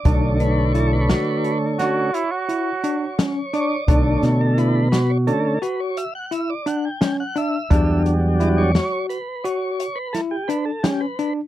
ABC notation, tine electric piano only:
X:1
M:11/8
L:1/8
Q:1/4=86
K:Bm
V:1 name="Tine electric piano"
D2 E F2 F2 E D C D | D2 E F2 F2 E D C D | D2 E F2 F2 E D C D |]